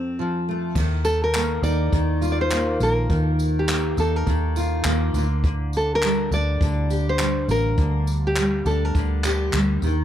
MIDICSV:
0, 0, Header, 1, 5, 480
1, 0, Start_track
1, 0, Tempo, 585366
1, 621, Time_signature, 4, 2, 24, 8
1, 8235, End_track
2, 0, Start_track
2, 0, Title_t, "Nylon-string guitar"
2, 0, Program_c, 0, 24
2, 859, Note_on_c, 0, 69, 94
2, 1008, Note_off_c, 0, 69, 0
2, 1014, Note_on_c, 0, 70, 98
2, 1336, Note_off_c, 0, 70, 0
2, 1339, Note_on_c, 0, 74, 96
2, 1892, Note_off_c, 0, 74, 0
2, 1901, Note_on_c, 0, 74, 73
2, 1967, Note_off_c, 0, 74, 0
2, 1977, Note_on_c, 0, 72, 102
2, 2316, Note_off_c, 0, 72, 0
2, 2320, Note_on_c, 0, 70, 85
2, 2945, Note_on_c, 0, 67, 81
2, 2953, Note_off_c, 0, 70, 0
2, 3248, Note_off_c, 0, 67, 0
2, 3278, Note_on_c, 0, 69, 71
2, 3412, Note_off_c, 0, 69, 0
2, 3412, Note_on_c, 0, 70, 72
2, 4225, Note_off_c, 0, 70, 0
2, 4730, Note_on_c, 0, 69, 98
2, 4851, Note_off_c, 0, 69, 0
2, 4880, Note_on_c, 0, 70, 102
2, 5177, Note_off_c, 0, 70, 0
2, 5196, Note_on_c, 0, 74, 104
2, 5813, Note_off_c, 0, 74, 0
2, 5816, Note_on_c, 0, 72, 99
2, 6155, Note_off_c, 0, 72, 0
2, 6158, Note_on_c, 0, 70, 95
2, 6780, Note_on_c, 0, 67, 82
2, 6793, Note_off_c, 0, 70, 0
2, 7105, Note_on_c, 0, 69, 70
2, 7119, Note_off_c, 0, 67, 0
2, 7255, Note_off_c, 0, 69, 0
2, 7255, Note_on_c, 0, 70, 74
2, 8067, Note_off_c, 0, 70, 0
2, 8235, End_track
3, 0, Start_track
3, 0, Title_t, "Steel-string acoustic guitar"
3, 0, Program_c, 1, 25
3, 0, Note_on_c, 1, 41, 75
3, 0, Note_on_c, 1, 60, 55
3, 157, Note_on_c, 1, 53, 63
3, 398, Note_on_c, 1, 57, 57
3, 631, Note_off_c, 1, 53, 0
3, 635, Note_on_c, 1, 51, 81
3, 680, Note_off_c, 1, 41, 0
3, 682, Note_off_c, 1, 60, 0
3, 687, Note_off_c, 1, 57, 0
3, 1109, Note_on_c, 1, 58, 60
3, 1350, Note_on_c, 1, 63, 62
3, 1572, Note_off_c, 1, 51, 0
3, 1582, Note_on_c, 1, 51, 81
3, 1815, Note_on_c, 1, 65, 66
3, 2061, Note_off_c, 1, 58, 0
3, 2064, Note_on_c, 1, 58, 62
3, 2297, Note_off_c, 1, 58, 0
3, 2300, Note_on_c, 1, 58, 59
3, 2531, Note_off_c, 1, 51, 0
3, 2541, Note_on_c, 1, 51, 73
3, 3016, Note_off_c, 1, 58, 0
3, 3019, Note_on_c, 1, 58, 58
3, 3256, Note_off_c, 1, 63, 0
3, 3265, Note_on_c, 1, 63, 64
3, 3490, Note_off_c, 1, 51, 0
3, 3500, Note_on_c, 1, 51, 82
3, 3735, Note_off_c, 1, 65, 0
3, 3745, Note_on_c, 1, 65, 65
3, 3983, Note_off_c, 1, 58, 0
3, 3987, Note_on_c, 1, 58, 68
3, 4230, Note_on_c, 1, 50, 74
3, 4278, Note_off_c, 1, 51, 0
3, 4281, Note_off_c, 1, 63, 0
3, 4281, Note_off_c, 1, 65, 0
3, 4455, Note_off_c, 1, 50, 0
3, 4465, Note_on_c, 1, 50, 70
3, 4951, Note_on_c, 1, 55, 61
3, 5192, Note_on_c, 1, 62, 65
3, 5419, Note_off_c, 1, 50, 0
3, 5429, Note_on_c, 1, 50, 82
3, 5660, Note_on_c, 1, 67, 70
3, 5891, Note_off_c, 1, 55, 0
3, 5901, Note_on_c, 1, 55, 60
3, 6134, Note_off_c, 1, 58, 0
3, 6138, Note_on_c, 1, 58, 52
3, 6375, Note_off_c, 1, 50, 0
3, 6385, Note_on_c, 1, 50, 73
3, 6862, Note_off_c, 1, 55, 0
3, 6873, Note_on_c, 1, 55, 58
3, 7105, Note_off_c, 1, 62, 0
3, 7114, Note_on_c, 1, 62, 65
3, 7338, Note_off_c, 1, 50, 0
3, 7348, Note_on_c, 1, 50, 84
3, 7577, Note_off_c, 1, 67, 0
3, 7586, Note_on_c, 1, 67, 69
3, 7817, Note_off_c, 1, 55, 0
3, 7827, Note_on_c, 1, 55, 67
3, 8065, Note_off_c, 1, 55, 0
3, 8069, Note_on_c, 1, 51, 76
3, 8123, Note_off_c, 1, 50, 0
3, 8123, Note_off_c, 1, 67, 0
3, 8127, Note_off_c, 1, 62, 0
3, 8235, Note_off_c, 1, 51, 0
3, 8235, Note_off_c, 1, 58, 0
3, 8235, End_track
4, 0, Start_track
4, 0, Title_t, "Fingered electric bass"
4, 0, Program_c, 2, 33
4, 616, Note_on_c, 2, 39, 99
4, 1305, Note_off_c, 2, 39, 0
4, 1333, Note_on_c, 2, 39, 92
4, 1557, Note_off_c, 2, 39, 0
4, 1579, Note_on_c, 2, 39, 85
4, 2267, Note_off_c, 2, 39, 0
4, 2298, Note_on_c, 2, 34, 89
4, 2520, Note_off_c, 2, 34, 0
4, 2539, Note_on_c, 2, 39, 98
4, 3227, Note_off_c, 2, 39, 0
4, 3261, Note_on_c, 2, 39, 95
4, 3482, Note_off_c, 2, 39, 0
4, 3496, Note_on_c, 2, 39, 84
4, 3946, Note_off_c, 2, 39, 0
4, 3976, Note_on_c, 2, 39, 105
4, 4199, Note_off_c, 2, 39, 0
4, 4213, Note_on_c, 2, 38, 99
4, 5145, Note_off_c, 2, 38, 0
4, 5175, Note_on_c, 2, 38, 89
4, 5399, Note_off_c, 2, 38, 0
4, 5417, Note_on_c, 2, 38, 96
4, 6107, Note_off_c, 2, 38, 0
4, 6135, Note_on_c, 2, 33, 86
4, 6359, Note_off_c, 2, 33, 0
4, 6379, Note_on_c, 2, 38, 101
4, 7068, Note_off_c, 2, 38, 0
4, 7097, Note_on_c, 2, 38, 100
4, 7321, Note_off_c, 2, 38, 0
4, 7337, Note_on_c, 2, 38, 92
4, 7787, Note_off_c, 2, 38, 0
4, 7816, Note_on_c, 2, 38, 85
4, 8040, Note_off_c, 2, 38, 0
4, 8053, Note_on_c, 2, 39, 90
4, 8235, Note_off_c, 2, 39, 0
4, 8235, End_track
5, 0, Start_track
5, 0, Title_t, "Drums"
5, 618, Note_on_c, 9, 36, 108
5, 619, Note_on_c, 9, 49, 93
5, 619, Note_on_c, 9, 54, 36
5, 700, Note_off_c, 9, 36, 0
5, 701, Note_off_c, 9, 49, 0
5, 701, Note_off_c, 9, 54, 0
5, 857, Note_on_c, 9, 54, 36
5, 858, Note_off_c, 9, 54, 0
5, 858, Note_on_c, 9, 54, 85
5, 940, Note_off_c, 9, 54, 0
5, 1095, Note_on_c, 9, 54, 82
5, 1102, Note_on_c, 9, 39, 97
5, 1177, Note_off_c, 9, 54, 0
5, 1184, Note_off_c, 9, 39, 0
5, 1341, Note_on_c, 9, 54, 64
5, 1343, Note_off_c, 9, 54, 0
5, 1343, Note_on_c, 9, 54, 32
5, 1425, Note_off_c, 9, 54, 0
5, 1579, Note_on_c, 9, 36, 103
5, 1580, Note_on_c, 9, 54, 50
5, 1661, Note_off_c, 9, 36, 0
5, 1662, Note_off_c, 9, 54, 0
5, 1820, Note_on_c, 9, 54, 40
5, 1823, Note_off_c, 9, 54, 0
5, 1823, Note_on_c, 9, 54, 63
5, 1905, Note_off_c, 9, 54, 0
5, 2054, Note_on_c, 9, 54, 93
5, 2059, Note_on_c, 9, 39, 97
5, 2136, Note_off_c, 9, 54, 0
5, 2141, Note_off_c, 9, 39, 0
5, 2298, Note_on_c, 9, 54, 45
5, 2304, Note_off_c, 9, 54, 0
5, 2304, Note_on_c, 9, 54, 52
5, 2386, Note_off_c, 9, 54, 0
5, 2540, Note_on_c, 9, 36, 109
5, 2541, Note_on_c, 9, 54, 33
5, 2622, Note_off_c, 9, 36, 0
5, 2623, Note_off_c, 9, 54, 0
5, 2781, Note_on_c, 9, 54, 37
5, 2785, Note_off_c, 9, 54, 0
5, 2785, Note_on_c, 9, 54, 81
5, 2867, Note_off_c, 9, 54, 0
5, 3016, Note_on_c, 9, 54, 81
5, 3025, Note_on_c, 9, 39, 107
5, 3098, Note_off_c, 9, 54, 0
5, 3107, Note_off_c, 9, 39, 0
5, 3258, Note_on_c, 9, 54, 31
5, 3264, Note_off_c, 9, 54, 0
5, 3264, Note_on_c, 9, 54, 59
5, 3346, Note_off_c, 9, 54, 0
5, 3499, Note_on_c, 9, 36, 92
5, 3503, Note_on_c, 9, 54, 55
5, 3581, Note_off_c, 9, 36, 0
5, 3585, Note_off_c, 9, 54, 0
5, 3739, Note_on_c, 9, 54, 63
5, 3745, Note_off_c, 9, 54, 0
5, 3745, Note_on_c, 9, 54, 43
5, 3827, Note_off_c, 9, 54, 0
5, 3973, Note_on_c, 9, 39, 111
5, 3976, Note_on_c, 9, 54, 81
5, 4055, Note_off_c, 9, 39, 0
5, 4058, Note_off_c, 9, 54, 0
5, 4216, Note_on_c, 9, 54, 53
5, 4220, Note_off_c, 9, 54, 0
5, 4220, Note_on_c, 9, 54, 50
5, 4302, Note_off_c, 9, 54, 0
5, 4459, Note_on_c, 9, 36, 107
5, 4467, Note_on_c, 9, 54, 36
5, 4541, Note_off_c, 9, 36, 0
5, 4549, Note_off_c, 9, 54, 0
5, 4700, Note_on_c, 9, 54, 71
5, 4709, Note_off_c, 9, 54, 0
5, 4709, Note_on_c, 9, 54, 36
5, 4791, Note_off_c, 9, 54, 0
5, 4940, Note_on_c, 9, 39, 106
5, 4944, Note_on_c, 9, 54, 80
5, 5022, Note_off_c, 9, 39, 0
5, 5026, Note_off_c, 9, 54, 0
5, 5184, Note_on_c, 9, 54, 71
5, 5266, Note_off_c, 9, 54, 0
5, 5418, Note_on_c, 9, 36, 99
5, 5428, Note_on_c, 9, 54, 51
5, 5500, Note_off_c, 9, 36, 0
5, 5510, Note_off_c, 9, 54, 0
5, 5661, Note_on_c, 9, 54, 45
5, 5663, Note_off_c, 9, 54, 0
5, 5663, Note_on_c, 9, 54, 54
5, 5745, Note_off_c, 9, 54, 0
5, 5895, Note_on_c, 9, 39, 98
5, 5901, Note_on_c, 9, 54, 85
5, 5977, Note_off_c, 9, 39, 0
5, 5983, Note_off_c, 9, 54, 0
5, 6141, Note_on_c, 9, 54, 52
5, 6142, Note_off_c, 9, 54, 0
5, 6142, Note_on_c, 9, 54, 47
5, 6224, Note_off_c, 9, 54, 0
5, 6377, Note_on_c, 9, 54, 37
5, 6379, Note_on_c, 9, 36, 106
5, 6459, Note_off_c, 9, 54, 0
5, 6461, Note_off_c, 9, 36, 0
5, 6620, Note_on_c, 9, 54, 41
5, 6702, Note_off_c, 9, 54, 0
5, 6856, Note_on_c, 9, 39, 110
5, 6858, Note_on_c, 9, 54, 77
5, 6938, Note_off_c, 9, 39, 0
5, 6940, Note_off_c, 9, 54, 0
5, 7098, Note_on_c, 9, 54, 28
5, 7101, Note_off_c, 9, 54, 0
5, 7101, Note_on_c, 9, 54, 67
5, 7183, Note_off_c, 9, 54, 0
5, 7338, Note_on_c, 9, 36, 96
5, 7340, Note_on_c, 9, 54, 49
5, 7420, Note_off_c, 9, 36, 0
5, 7422, Note_off_c, 9, 54, 0
5, 7578, Note_on_c, 9, 39, 78
5, 7580, Note_on_c, 9, 54, 64
5, 7581, Note_off_c, 9, 54, 0
5, 7581, Note_on_c, 9, 54, 45
5, 7660, Note_off_c, 9, 39, 0
5, 7663, Note_off_c, 9, 54, 0
5, 7812, Note_on_c, 9, 54, 84
5, 7815, Note_on_c, 9, 39, 93
5, 7894, Note_off_c, 9, 54, 0
5, 7897, Note_off_c, 9, 39, 0
5, 8053, Note_on_c, 9, 54, 46
5, 8064, Note_off_c, 9, 54, 0
5, 8064, Note_on_c, 9, 54, 55
5, 8146, Note_off_c, 9, 54, 0
5, 8235, End_track
0, 0, End_of_file